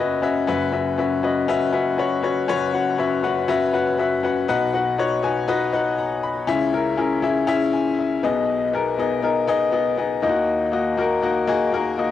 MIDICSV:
0, 0, Header, 1, 2, 480
1, 0, Start_track
1, 0, Tempo, 499584
1, 468, Time_signature, 4, 2, 24, 8
1, 11637, End_track
2, 0, Start_track
2, 0, Title_t, "Grand piano"
2, 0, Program_c, 0, 0
2, 0, Control_c, 0, 64, 127
2, 0, Note_on_c, 0, 30, 69
2, 0, Note_on_c, 0, 42, 74
2, 0, Note_on_c, 0, 61, 79
2, 0, Note_on_c, 0, 66, 73
2, 0, Note_on_c, 0, 71, 76
2, 0, Note_on_c, 0, 75, 93
2, 0, Note_on_c, 0, 76, 91
2, 0, Note_on_c, 0, 78, 84
2, 158, Note_off_c, 0, 61, 0
2, 160, Note_off_c, 0, 66, 0
2, 162, Note_off_c, 0, 71, 0
2, 164, Note_off_c, 0, 75, 0
2, 211, Note_on_c, 0, 61, 84
2, 218, Note_on_c, 0, 66, 77
2, 220, Note_on_c, 0, 71, 76
2, 224, Note_off_c, 0, 76, 0
2, 224, Note_on_c, 0, 76, 94
2, 397, Note_off_c, 0, 61, 0
2, 401, Note_off_c, 0, 66, 0
2, 402, Note_off_c, 0, 71, 0
2, 404, Note_off_c, 0, 76, 0
2, 427, Note_off_c, 0, 30, 0
2, 427, Note_off_c, 0, 42, 0
2, 455, Note_on_c, 0, 61, 100
2, 458, Note_on_c, 0, 66, 84
2, 459, Note_on_c, 0, 30, 60
2, 463, Note_on_c, 0, 42, 67
2, 465, Note_on_c, 0, 71, 90
2, 469, Note_on_c, 0, 76, 100
2, 482, Control_c, 0, 64, 0
2, 484, Note_off_c, 0, 78, 0
2, 625, Control_c, 0, 64, 127
2, 639, Note_off_c, 0, 61, 0
2, 641, Note_off_c, 0, 66, 0
2, 644, Note_off_c, 0, 71, 0
2, 646, Note_off_c, 0, 76, 0
2, 693, Note_on_c, 0, 61, 73
2, 696, Note_on_c, 0, 66, 65
2, 700, Note_on_c, 0, 71, 63
2, 706, Note_on_c, 0, 76, 79
2, 878, Note_off_c, 0, 61, 0
2, 880, Note_off_c, 0, 66, 0
2, 882, Note_off_c, 0, 71, 0
2, 885, Note_off_c, 0, 76, 0
2, 939, Note_on_c, 0, 61, 80
2, 944, Note_on_c, 0, 66, 67
2, 946, Note_on_c, 0, 71, 69
2, 951, Note_on_c, 0, 76, 79
2, 1122, Note_off_c, 0, 61, 0
2, 1124, Note_off_c, 0, 66, 0
2, 1125, Note_off_c, 0, 71, 0
2, 1127, Note_off_c, 0, 76, 0
2, 1181, Note_on_c, 0, 61, 78
2, 1183, Note_on_c, 0, 66, 73
2, 1190, Note_on_c, 0, 71, 70
2, 1195, Note_on_c, 0, 75, 89
2, 1363, Note_off_c, 0, 61, 0
2, 1364, Note_off_c, 0, 66, 0
2, 1367, Note_off_c, 0, 71, 0
2, 1369, Note_off_c, 0, 75, 0
2, 1423, Note_on_c, 0, 61, 102
2, 1427, Note_on_c, 0, 66, 90
2, 1431, Note_on_c, 0, 71, 94
2, 1436, Note_on_c, 0, 76, 110
2, 1604, Note_off_c, 0, 61, 0
2, 1606, Note_off_c, 0, 66, 0
2, 1608, Note_off_c, 0, 71, 0
2, 1610, Note_off_c, 0, 76, 0
2, 1658, Note_on_c, 0, 61, 79
2, 1661, Note_on_c, 0, 66, 73
2, 1667, Note_on_c, 0, 71, 75
2, 1670, Note_on_c, 0, 76, 85
2, 1841, Note_off_c, 0, 61, 0
2, 1843, Note_off_c, 0, 66, 0
2, 1846, Note_off_c, 0, 71, 0
2, 1847, Note_off_c, 0, 76, 0
2, 1900, Note_on_c, 0, 61, 78
2, 1904, Note_on_c, 0, 66, 77
2, 1907, Note_on_c, 0, 71, 75
2, 1914, Note_on_c, 0, 73, 90
2, 2082, Note_off_c, 0, 61, 0
2, 2084, Note_off_c, 0, 66, 0
2, 2086, Note_off_c, 0, 71, 0
2, 2089, Note_off_c, 0, 73, 0
2, 2138, Note_on_c, 0, 61, 79
2, 2142, Note_on_c, 0, 66, 75
2, 2146, Note_on_c, 0, 71, 75
2, 2152, Note_on_c, 0, 73, 93
2, 2321, Note_off_c, 0, 61, 0
2, 2323, Note_off_c, 0, 66, 0
2, 2325, Note_off_c, 0, 71, 0
2, 2328, Note_off_c, 0, 73, 0
2, 2346, Note_off_c, 0, 30, 0
2, 2348, Note_off_c, 0, 42, 0
2, 2383, Note_on_c, 0, 61, 103
2, 2386, Note_on_c, 0, 66, 86
2, 2388, Note_on_c, 0, 42, 69
2, 2389, Note_on_c, 0, 30, 69
2, 2391, Note_on_c, 0, 71, 92
2, 2396, Note_on_c, 0, 73, 116
2, 2564, Note_off_c, 0, 61, 0
2, 2565, Note_off_c, 0, 66, 0
2, 2568, Note_off_c, 0, 71, 0
2, 2570, Note_off_c, 0, 73, 0
2, 2620, Note_on_c, 0, 61, 73
2, 2625, Note_on_c, 0, 66, 70
2, 2629, Note_on_c, 0, 71, 72
2, 2635, Note_on_c, 0, 78, 84
2, 2802, Note_off_c, 0, 61, 0
2, 2804, Note_off_c, 0, 66, 0
2, 2807, Note_off_c, 0, 71, 0
2, 2810, Note_off_c, 0, 78, 0
2, 2865, Note_on_c, 0, 61, 86
2, 2868, Note_on_c, 0, 66, 78
2, 2872, Note_on_c, 0, 71, 73
2, 2876, Note_on_c, 0, 76, 87
2, 3045, Note_off_c, 0, 61, 0
2, 3046, Note_off_c, 0, 66, 0
2, 3048, Note_off_c, 0, 71, 0
2, 3050, Note_off_c, 0, 76, 0
2, 3102, Note_on_c, 0, 61, 82
2, 3105, Note_on_c, 0, 66, 72
2, 3111, Note_on_c, 0, 71, 79
2, 3113, Note_on_c, 0, 78, 86
2, 3283, Note_off_c, 0, 61, 0
2, 3285, Note_off_c, 0, 66, 0
2, 3288, Note_off_c, 0, 71, 0
2, 3289, Note_off_c, 0, 78, 0
2, 3344, Note_on_c, 0, 61, 101
2, 3345, Note_on_c, 0, 66, 96
2, 3351, Note_on_c, 0, 71, 97
2, 3357, Note_on_c, 0, 76, 111
2, 3524, Note_off_c, 0, 61, 0
2, 3525, Note_off_c, 0, 66, 0
2, 3528, Note_off_c, 0, 71, 0
2, 3531, Note_off_c, 0, 76, 0
2, 3584, Note_on_c, 0, 61, 82
2, 3586, Note_on_c, 0, 66, 79
2, 3589, Note_on_c, 0, 71, 76
2, 3595, Note_on_c, 0, 78, 92
2, 3764, Note_off_c, 0, 61, 0
2, 3765, Note_off_c, 0, 66, 0
2, 3767, Note_off_c, 0, 71, 0
2, 3770, Note_off_c, 0, 78, 0
2, 3824, Note_on_c, 0, 61, 77
2, 3828, Note_on_c, 0, 66, 75
2, 3833, Note_on_c, 0, 71, 69
2, 3838, Note_on_c, 0, 76, 86
2, 4004, Note_off_c, 0, 61, 0
2, 4006, Note_off_c, 0, 66, 0
2, 4009, Note_off_c, 0, 71, 0
2, 4012, Note_off_c, 0, 76, 0
2, 4065, Note_on_c, 0, 61, 80
2, 4069, Note_on_c, 0, 66, 74
2, 4075, Note_on_c, 0, 71, 71
2, 4079, Note_on_c, 0, 78, 87
2, 4245, Note_off_c, 0, 61, 0
2, 4247, Note_off_c, 0, 66, 0
2, 4250, Note_off_c, 0, 71, 0
2, 4252, Note_off_c, 0, 78, 0
2, 4270, Note_off_c, 0, 42, 0
2, 4271, Note_off_c, 0, 30, 0
2, 4307, Note_on_c, 0, 63, 103
2, 4310, Note_on_c, 0, 66, 95
2, 4313, Note_on_c, 0, 47, 73
2, 4314, Note_on_c, 0, 35, 72
2, 4314, Note_on_c, 0, 71, 99
2, 4320, Control_c, 0, 64, 0
2, 4320, Note_on_c, 0, 78, 111
2, 4483, Control_c, 0, 64, 127
2, 4486, Note_off_c, 0, 63, 0
2, 4487, Note_off_c, 0, 66, 0
2, 4489, Note_off_c, 0, 71, 0
2, 4492, Note_off_c, 0, 78, 0
2, 4548, Note_on_c, 0, 63, 78
2, 4550, Note_on_c, 0, 66, 73
2, 4556, Note_on_c, 0, 71, 69
2, 4560, Note_on_c, 0, 78, 89
2, 4726, Note_off_c, 0, 63, 0
2, 4727, Note_off_c, 0, 66, 0
2, 4730, Note_off_c, 0, 71, 0
2, 4732, Note_off_c, 0, 78, 0
2, 4785, Note_on_c, 0, 63, 81
2, 4791, Note_on_c, 0, 66, 78
2, 4794, Note_on_c, 0, 71, 76
2, 4799, Note_on_c, 0, 73, 96
2, 4965, Note_off_c, 0, 63, 0
2, 4968, Note_off_c, 0, 66, 0
2, 4969, Note_off_c, 0, 71, 0
2, 4972, Note_off_c, 0, 73, 0
2, 5022, Note_on_c, 0, 63, 84
2, 5025, Note_on_c, 0, 66, 76
2, 5029, Note_on_c, 0, 71, 77
2, 5034, Note_on_c, 0, 80, 95
2, 5203, Note_off_c, 0, 63, 0
2, 5205, Note_off_c, 0, 66, 0
2, 5207, Note_off_c, 0, 71, 0
2, 5209, Note_off_c, 0, 80, 0
2, 5263, Note_on_c, 0, 63, 104
2, 5268, Note_on_c, 0, 66, 103
2, 5271, Note_on_c, 0, 71, 101
2, 5274, Note_on_c, 0, 75, 117
2, 5444, Note_off_c, 0, 63, 0
2, 5447, Note_off_c, 0, 66, 0
2, 5448, Note_off_c, 0, 71, 0
2, 5449, Note_off_c, 0, 75, 0
2, 5501, Note_on_c, 0, 63, 89
2, 5506, Note_on_c, 0, 66, 79
2, 5507, Note_on_c, 0, 71, 79
2, 5512, Note_on_c, 0, 78, 89
2, 5683, Note_off_c, 0, 63, 0
2, 5685, Note_off_c, 0, 66, 0
2, 5686, Note_off_c, 0, 71, 0
2, 5688, Note_off_c, 0, 78, 0
2, 5750, Note_on_c, 0, 82, 69
2, 5978, Note_off_c, 0, 82, 0
2, 5988, Note_on_c, 0, 83, 69
2, 6193, Note_off_c, 0, 35, 0
2, 6193, Note_off_c, 0, 47, 0
2, 6219, Note_on_c, 0, 61, 108
2, 6225, Note_on_c, 0, 64, 92
2, 6226, Note_on_c, 0, 37, 69
2, 6227, Note_on_c, 0, 49, 72
2, 6227, Note_on_c, 0, 68, 95
2, 6232, Note_on_c, 0, 76, 115
2, 6240, Control_c, 0, 64, 0
2, 6399, Control_c, 0, 64, 127
2, 6402, Note_off_c, 0, 61, 0
2, 6405, Note_off_c, 0, 64, 0
2, 6406, Note_off_c, 0, 68, 0
2, 6409, Note_off_c, 0, 76, 0
2, 6445, Note_off_c, 0, 83, 0
2, 6463, Note_on_c, 0, 61, 78
2, 6466, Note_on_c, 0, 64, 72
2, 6470, Note_on_c, 0, 68, 70
2, 6475, Note_on_c, 0, 70, 92
2, 6644, Note_off_c, 0, 61, 0
2, 6646, Note_off_c, 0, 64, 0
2, 6647, Note_off_c, 0, 68, 0
2, 6650, Note_off_c, 0, 70, 0
2, 6701, Note_on_c, 0, 61, 85
2, 6703, Note_on_c, 0, 64, 77
2, 6708, Note_on_c, 0, 68, 77
2, 6713, Note_on_c, 0, 70, 87
2, 6883, Note_off_c, 0, 61, 0
2, 6884, Note_off_c, 0, 64, 0
2, 6887, Note_off_c, 0, 68, 0
2, 6889, Note_off_c, 0, 70, 0
2, 6939, Note_on_c, 0, 61, 92
2, 6947, Note_on_c, 0, 64, 80
2, 6949, Note_on_c, 0, 68, 79
2, 6953, Note_on_c, 0, 76, 90
2, 7122, Note_off_c, 0, 61, 0
2, 7126, Note_off_c, 0, 64, 0
2, 7127, Note_off_c, 0, 68, 0
2, 7129, Note_off_c, 0, 76, 0
2, 7178, Note_on_c, 0, 61, 111
2, 7184, Note_on_c, 0, 64, 101
2, 7186, Note_on_c, 0, 68, 105
2, 7192, Note_on_c, 0, 76, 115
2, 7362, Note_off_c, 0, 61, 0
2, 7364, Note_off_c, 0, 64, 0
2, 7366, Note_off_c, 0, 68, 0
2, 7368, Note_off_c, 0, 76, 0
2, 7429, Note_on_c, 0, 80, 68
2, 7657, Note_off_c, 0, 80, 0
2, 7673, Note_on_c, 0, 76, 70
2, 7869, Note_off_c, 0, 37, 0
2, 7870, Note_off_c, 0, 49, 0
2, 7909, Note_on_c, 0, 59, 92
2, 7913, Note_on_c, 0, 63, 85
2, 7914, Note_on_c, 0, 35, 71
2, 7914, Note_on_c, 0, 47, 72
2, 7919, Note_on_c, 0, 68, 82
2, 7920, Control_c, 0, 64, 0
2, 7922, Note_on_c, 0, 75, 105
2, 8077, Control_c, 0, 64, 127
2, 8128, Note_off_c, 0, 76, 0
2, 8293, Note_off_c, 0, 59, 0
2, 8296, Note_off_c, 0, 63, 0
2, 8299, Note_off_c, 0, 68, 0
2, 8300, Note_off_c, 0, 75, 0
2, 8390, Note_on_c, 0, 59, 84
2, 8393, Note_on_c, 0, 63, 74
2, 8399, Note_on_c, 0, 68, 71
2, 8403, Note_on_c, 0, 70, 88
2, 8568, Note_off_c, 0, 59, 0
2, 8569, Note_off_c, 0, 63, 0
2, 8572, Note_off_c, 0, 68, 0
2, 8574, Note_off_c, 0, 70, 0
2, 8629, Note_on_c, 0, 59, 82
2, 8634, Note_on_c, 0, 63, 76
2, 8639, Note_on_c, 0, 68, 80
2, 8644, Note_on_c, 0, 75, 99
2, 8807, Note_off_c, 0, 59, 0
2, 8810, Note_off_c, 0, 63, 0
2, 8812, Note_off_c, 0, 68, 0
2, 8815, Note_off_c, 0, 75, 0
2, 8863, Note_on_c, 0, 59, 87
2, 8868, Note_on_c, 0, 63, 79
2, 8874, Note_on_c, 0, 68, 77
2, 8876, Note_on_c, 0, 70, 89
2, 9044, Note_off_c, 0, 59, 0
2, 9047, Note_off_c, 0, 63, 0
2, 9050, Note_off_c, 0, 68, 0
2, 9051, Note_off_c, 0, 70, 0
2, 9102, Note_on_c, 0, 59, 106
2, 9109, Note_on_c, 0, 63, 107
2, 9112, Note_on_c, 0, 68, 100
2, 9117, Note_on_c, 0, 75, 117
2, 9284, Note_off_c, 0, 59, 0
2, 9288, Note_off_c, 0, 63, 0
2, 9289, Note_off_c, 0, 68, 0
2, 9291, Note_off_c, 0, 75, 0
2, 9340, Note_on_c, 0, 59, 91
2, 9345, Note_on_c, 0, 63, 80
2, 9349, Note_on_c, 0, 68, 80
2, 9354, Note_on_c, 0, 75, 91
2, 9523, Note_off_c, 0, 59, 0
2, 9526, Note_off_c, 0, 63, 0
2, 9528, Note_off_c, 0, 68, 0
2, 9530, Note_off_c, 0, 75, 0
2, 9584, Note_on_c, 0, 59, 86
2, 9587, Note_on_c, 0, 63, 76
2, 9593, Note_on_c, 0, 68, 79
2, 9597, Note_on_c, 0, 75, 92
2, 9765, Note_off_c, 0, 59, 0
2, 9766, Note_off_c, 0, 63, 0
2, 9770, Note_off_c, 0, 68, 0
2, 9772, Note_off_c, 0, 75, 0
2, 9794, Note_off_c, 0, 35, 0
2, 9794, Note_off_c, 0, 47, 0
2, 9820, Note_on_c, 0, 58, 90
2, 9826, Note_on_c, 0, 39, 72
2, 9826, Note_on_c, 0, 51, 77
2, 9826, Note_on_c, 0, 63, 84
2, 9829, Note_on_c, 0, 64, 70
2, 9833, Note_on_c, 0, 75, 98
2, 9844, Control_c, 0, 64, 0
2, 9888, Note_off_c, 0, 64, 0
2, 9888, Note_on_c, 0, 66, 86
2, 9995, Control_c, 0, 64, 127
2, 10210, Note_off_c, 0, 58, 0
2, 10213, Note_off_c, 0, 63, 0
2, 10216, Note_off_c, 0, 75, 0
2, 10244, Note_off_c, 0, 66, 0
2, 10298, Note_on_c, 0, 58, 81
2, 10302, Note_on_c, 0, 63, 71
2, 10309, Note_on_c, 0, 66, 72
2, 10311, Note_on_c, 0, 75, 87
2, 10482, Note_off_c, 0, 58, 0
2, 10484, Note_off_c, 0, 63, 0
2, 10488, Note_off_c, 0, 66, 0
2, 10489, Note_off_c, 0, 75, 0
2, 10543, Note_on_c, 0, 58, 87
2, 10547, Note_on_c, 0, 63, 76
2, 10551, Note_on_c, 0, 66, 78
2, 10557, Note_on_c, 0, 70, 93
2, 10725, Note_off_c, 0, 58, 0
2, 10727, Note_off_c, 0, 63, 0
2, 10729, Note_off_c, 0, 66, 0
2, 10732, Note_off_c, 0, 70, 0
2, 10784, Note_on_c, 0, 58, 85
2, 10787, Note_on_c, 0, 63, 77
2, 10792, Note_on_c, 0, 66, 81
2, 10796, Note_on_c, 0, 75, 92
2, 10966, Note_off_c, 0, 58, 0
2, 10967, Note_off_c, 0, 63, 0
2, 10970, Note_off_c, 0, 66, 0
2, 10972, Note_off_c, 0, 75, 0
2, 11024, Note_on_c, 0, 58, 105
2, 11029, Note_on_c, 0, 63, 99
2, 11035, Note_on_c, 0, 66, 96
2, 11039, Note_on_c, 0, 68, 112
2, 11206, Note_off_c, 0, 58, 0
2, 11208, Note_off_c, 0, 63, 0
2, 11211, Note_off_c, 0, 66, 0
2, 11213, Note_off_c, 0, 68, 0
2, 11265, Note_on_c, 0, 58, 84
2, 11272, Note_on_c, 0, 63, 77
2, 11274, Note_on_c, 0, 66, 76
2, 11278, Note_on_c, 0, 70, 96
2, 11446, Note_off_c, 0, 58, 0
2, 11450, Note_off_c, 0, 63, 0
2, 11451, Note_off_c, 0, 66, 0
2, 11453, Note_off_c, 0, 70, 0
2, 11508, Note_on_c, 0, 58, 78
2, 11514, Note_on_c, 0, 63, 73
2, 11519, Note_on_c, 0, 66, 73
2, 11520, Note_on_c, 0, 75, 85
2, 11637, Note_off_c, 0, 39, 0
2, 11637, Note_off_c, 0, 51, 0
2, 11637, Note_off_c, 0, 58, 0
2, 11637, Note_off_c, 0, 63, 0
2, 11637, Note_off_c, 0, 66, 0
2, 11637, Note_off_c, 0, 75, 0
2, 11637, End_track
0, 0, End_of_file